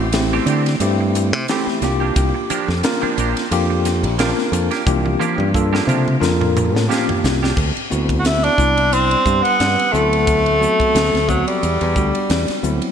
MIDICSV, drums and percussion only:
0, 0, Header, 1, 2, 480
1, 0, Start_track
1, 0, Tempo, 676437
1, 1533, Time_signature, 4, 2, 24, 8
1, 9165, End_track
2, 0, Start_track
2, 0, Title_t, "Drums"
2, 89, Note_on_c, 9, 44, 81
2, 89, Note_on_c, 9, 51, 76
2, 97, Note_on_c, 9, 38, 108
2, 160, Note_off_c, 9, 44, 0
2, 160, Note_off_c, 9, 51, 0
2, 168, Note_off_c, 9, 38, 0
2, 331, Note_on_c, 9, 44, 80
2, 331, Note_on_c, 9, 51, 55
2, 402, Note_off_c, 9, 44, 0
2, 402, Note_off_c, 9, 51, 0
2, 470, Note_on_c, 9, 51, 57
2, 478, Note_on_c, 9, 38, 31
2, 541, Note_off_c, 9, 51, 0
2, 549, Note_off_c, 9, 38, 0
2, 569, Note_on_c, 9, 44, 77
2, 569, Note_on_c, 9, 51, 71
2, 640, Note_off_c, 9, 44, 0
2, 640, Note_off_c, 9, 51, 0
2, 817, Note_on_c, 9, 44, 84
2, 817, Note_on_c, 9, 51, 51
2, 888, Note_off_c, 9, 44, 0
2, 888, Note_off_c, 9, 51, 0
2, 946, Note_on_c, 9, 51, 61
2, 1017, Note_off_c, 9, 51, 0
2, 1052, Note_on_c, 9, 44, 71
2, 1052, Note_on_c, 9, 51, 74
2, 1060, Note_on_c, 9, 38, 106
2, 1123, Note_off_c, 9, 44, 0
2, 1123, Note_off_c, 9, 51, 0
2, 1131, Note_off_c, 9, 38, 0
2, 1196, Note_on_c, 9, 38, 27
2, 1267, Note_off_c, 9, 38, 0
2, 1291, Note_on_c, 9, 44, 84
2, 1291, Note_on_c, 9, 51, 56
2, 1299, Note_on_c, 9, 38, 32
2, 1362, Note_off_c, 9, 44, 0
2, 1362, Note_off_c, 9, 51, 0
2, 1370, Note_off_c, 9, 38, 0
2, 1533, Note_on_c, 9, 44, 81
2, 1533, Note_on_c, 9, 51, 72
2, 1534, Note_on_c, 9, 36, 106
2, 1604, Note_off_c, 9, 44, 0
2, 1604, Note_off_c, 9, 51, 0
2, 1605, Note_off_c, 9, 36, 0
2, 1774, Note_on_c, 9, 44, 85
2, 1774, Note_on_c, 9, 51, 59
2, 1845, Note_off_c, 9, 44, 0
2, 1845, Note_off_c, 9, 51, 0
2, 1914, Note_on_c, 9, 38, 30
2, 1985, Note_off_c, 9, 38, 0
2, 2012, Note_on_c, 9, 44, 87
2, 2012, Note_on_c, 9, 51, 76
2, 2020, Note_on_c, 9, 38, 112
2, 2082, Note_off_c, 9, 44, 0
2, 2082, Note_off_c, 9, 51, 0
2, 2091, Note_off_c, 9, 38, 0
2, 2255, Note_on_c, 9, 44, 78
2, 2255, Note_on_c, 9, 51, 64
2, 2326, Note_off_c, 9, 44, 0
2, 2326, Note_off_c, 9, 51, 0
2, 2389, Note_on_c, 9, 51, 62
2, 2398, Note_on_c, 9, 38, 32
2, 2460, Note_off_c, 9, 51, 0
2, 2469, Note_off_c, 9, 38, 0
2, 2495, Note_on_c, 9, 44, 80
2, 2495, Note_on_c, 9, 51, 79
2, 2566, Note_off_c, 9, 44, 0
2, 2566, Note_off_c, 9, 51, 0
2, 2734, Note_on_c, 9, 44, 80
2, 2734, Note_on_c, 9, 51, 63
2, 2742, Note_on_c, 9, 38, 31
2, 2804, Note_off_c, 9, 44, 0
2, 2804, Note_off_c, 9, 51, 0
2, 2813, Note_off_c, 9, 38, 0
2, 2865, Note_on_c, 9, 51, 66
2, 2936, Note_off_c, 9, 51, 0
2, 2972, Note_on_c, 9, 44, 75
2, 2972, Note_on_c, 9, 51, 77
2, 2981, Note_on_c, 9, 38, 102
2, 3043, Note_off_c, 9, 44, 0
2, 3043, Note_off_c, 9, 51, 0
2, 3052, Note_off_c, 9, 38, 0
2, 3115, Note_on_c, 9, 38, 29
2, 3185, Note_off_c, 9, 38, 0
2, 3215, Note_on_c, 9, 44, 82
2, 3215, Note_on_c, 9, 51, 61
2, 3286, Note_off_c, 9, 44, 0
2, 3286, Note_off_c, 9, 51, 0
2, 3344, Note_on_c, 9, 51, 57
2, 3352, Note_on_c, 9, 38, 28
2, 3415, Note_off_c, 9, 51, 0
2, 3423, Note_off_c, 9, 38, 0
2, 3452, Note_on_c, 9, 44, 90
2, 3452, Note_on_c, 9, 48, 59
2, 3453, Note_on_c, 9, 36, 114
2, 3523, Note_off_c, 9, 44, 0
2, 3523, Note_off_c, 9, 48, 0
2, 3524, Note_off_c, 9, 36, 0
2, 3588, Note_on_c, 9, 48, 47
2, 3659, Note_off_c, 9, 48, 0
2, 3698, Note_on_c, 9, 44, 80
2, 3698, Note_on_c, 9, 48, 57
2, 3769, Note_off_c, 9, 44, 0
2, 3769, Note_off_c, 9, 48, 0
2, 3831, Note_on_c, 9, 48, 53
2, 3902, Note_off_c, 9, 48, 0
2, 3934, Note_on_c, 9, 36, 69
2, 3939, Note_on_c, 9, 44, 80
2, 4005, Note_off_c, 9, 36, 0
2, 4010, Note_off_c, 9, 44, 0
2, 4079, Note_on_c, 9, 38, 58
2, 4150, Note_off_c, 9, 38, 0
2, 4179, Note_on_c, 9, 44, 77
2, 4179, Note_on_c, 9, 47, 73
2, 4250, Note_off_c, 9, 44, 0
2, 4250, Note_off_c, 9, 47, 0
2, 4312, Note_on_c, 9, 47, 64
2, 4383, Note_off_c, 9, 47, 0
2, 4417, Note_on_c, 9, 44, 83
2, 4426, Note_on_c, 9, 38, 78
2, 4488, Note_off_c, 9, 44, 0
2, 4497, Note_off_c, 9, 38, 0
2, 4551, Note_on_c, 9, 45, 65
2, 4622, Note_off_c, 9, 45, 0
2, 4660, Note_on_c, 9, 44, 76
2, 4660, Note_on_c, 9, 45, 88
2, 4731, Note_off_c, 9, 44, 0
2, 4731, Note_off_c, 9, 45, 0
2, 4800, Note_on_c, 9, 38, 74
2, 4871, Note_off_c, 9, 38, 0
2, 4905, Note_on_c, 9, 44, 71
2, 4913, Note_on_c, 9, 38, 83
2, 4976, Note_off_c, 9, 44, 0
2, 4984, Note_off_c, 9, 38, 0
2, 5032, Note_on_c, 9, 43, 79
2, 5103, Note_off_c, 9, 43, 0
2, 5141, Note_on_c, 9, 44, 81
2, 5150, Note_on_c, 9, 38, 102
2, 5212, Note_off_c, 9, 44, 0
2, 5221, Note_off_c, 9, 38, 0
2, 5280, Note_on_c, 9, 38, 73
2, 5351, Note_off_c, 9, 38, 0
2, 5372, Note_on_c, 9, 36, 93
2, 5379, Note_on_c, 9, 49, 86
2, 5443, Note_off_c, 9, 36, 0
2, 5450, Note_off_c, 9, 49, 0
2, 5510, Note_on_c, 9, 51, 47
2, 5581, Note_off_c, 9, 51, 0
2, 5615, Note_on_c, 9, 44, 78
2, 5686, Note_off_c, 9, 44, 0
2, 5742, Note_on_c, 9, 36, 67
2, 5746, Note_on_c, 9, 51, 53
2, 5813, Note_off_c, 9, 36, 0
2, 5817, Note_off_c, 9, 51, 0
2, 5852, Note_on_c, 9, 44, 73
2, 5852, Note_on_c, 9, 51, 73
2, 5861, Note_on_c, 9, 38, 97
2, 5923, Note_off_c, 9, 44, 0
2, 5923, Note_off_c, 9, 51, 0
2, 5932, Note_off_c, 9, 38, 0
2, 5987, Note_on_c, 9, 51, 48
2, 6058, Note_off_c, 9, 51, 0
2, 6090, Note_on_c, 9, 36, 70
2, 6093, Note_on_c, 9, 44, 81
2, 6161, Note_off_c, 9, 36, 0
2, 6164, Note_off_c, 9, 44, 0
2, 6227, Note_on_c, 9, 51, 56
2, 6297, Note_off_c, 9, 51, 0
2, 6334, Note_on_c, 9, 44, 69
2, 6334, Note_on_c, 9, 51, 75
2, 6405, Note_off_c, 9, 44, 0
2, 6405, Note_off_c, 9, 51, 0
2, 6465, Note_on_c, 9, 51, 56
2, 6536, Note_off_c, 9, 51, 0
2, 6569, Note_on_c, 9, 36, 68
2, 6569, Note_on_c, 9, 44, 76
2, 6640, Note_off_c, 9, 36, 0
2, 6640, Note_off_c, 9, 44, 0
2, 6706, Note_on_c, 9, 51, 60
2, 6777, Note_off_c, 9, 51, 0
2, 6813, Note_on_c, 9, 44, 68
2, 6813, Note_on_c, 9, 51, 73
2, 6821, Note_on_c, 9, 38, 93
2, 6883, Note_off_c, 9, 44, 0
2, 6883, Note_off_c, 9, 51, 0
2, 6892, Note_off_c, 9, 38, 0
2, 6950, Note_on_c, 9, 51, 55
2, 7021, Note_off_c, 9, 51, 0
2, 7054, Note_on_c, 9, 44, 69
2, 7125, Note_off_c, 9, 44, 0
2, 7187, Note_on_c, 9, 51, 52
2, 7258, Note_off_c, 9, 51, 0
2, 7290, Note_on_c, 9, 36, 100
2, 7292, Note_on_c, 9, 44, 74
2, 7292, Note_on_c, 9, 51, 72
2, 7361, Note_off_c, 9, 36, 0
2, 7363, Note_off_c, 9, 44, 0
2, 7363, Note_off_c, 9, 51, 0
2, 7423, Note_on_c, 9, 51, 48
2, 7494, Note_off_c, 9, 51, 0
2, 7538, Note_on_c, 9, 44, 78
2, 7609, Note_off_c, 9, 44, 0
2, 7663, Note_on_c, 9, 36, 68
2, 7670, Note_on_c, 9, 51, 54
2, 7734, Note_off_c, 9, 36, 0
2, 7741, Note_off_c, 9, 51, 0
2, 7774, Note_on_c, 9, 44, 69
2, 7774, Note_on_c, 9, 51, 75
2, 7782, Note_on_c, 9, 38, 92
2, 7845, Note_off_c, 9, 44, 0
2, 7845, Note_off_c, 9, 51, 0
2, 7853, Note_off_c, 9, 38, 0
2, 7910, Note_on_c, 9, 51, 45
2, 7918, Note_on_c, 9, 38, 25
2, 7981, Note_off_c, 9, 51, 0
2, 7989, Note_off_c, 9, 38, 0
2, 8009, Note_on_c, 9, 36, 64
2, 8013, Note_on_c, 9, 44, 80
2, 8080, Note_off_c, 9, 36, 0
2, 8084, Note_off_c, 9, 44, 0
2, 8143, Note_on_c, 9, 51, 54
2, 8214, Note_off_c, 9, 51, 0
2, 8254, Note_on_c, 9, 44, 75
2, 8254, Note_on_c, 9, 51, 70
2, 8325, Note_off_c, 9, 44, 0
2, 8325, Note_off_c, 9, 51, 0
2, 8379, Note_on_c, 9, 51, 45
2, 8450, Note_off_c, 9, 51, 0
2, 8486, Note_on_c, 9, 36, 74
2, 8487, Note_on_c, 9, 44, 76
2, 8557, Note_off_c, 9, 36, 0
2, 8558, Note_off_c, 9, 44, 0
2, 8620, Note_on_c, 9, 51, 53
2, 8691, Note_off_c, 9, 51, 0
2, 8726, Note_on_c, 9, 44, 70
2, 8726, Note_on_c, 9, 51, 63
2, 8735, Note_on_c, 9, 38, 94
2, 8797, Note_off_c, 9, 44, 0
2, 8797, Note_off_c, 9, 51, 0
2, 8806, Note_off_c, 9, 38, 0
2, 8856, Note_on_c, 9, 51, 51
2, 8865, Note_on_c, 9, 38, 26
2, 8927, Note_off_c, 9, 51, 0
2, 8936, Note_off_c, 9, 38, 0
2, 8966, Note_on_c, 9, 44, 72
2, 9037, Note_off_c, 9, 44, 0
2, 9095, Note_on_c, 9, 51, 52
2, 9165, Note_off_c, 9, 51, 0
2, 9165, End_track
0, 0, End_of_file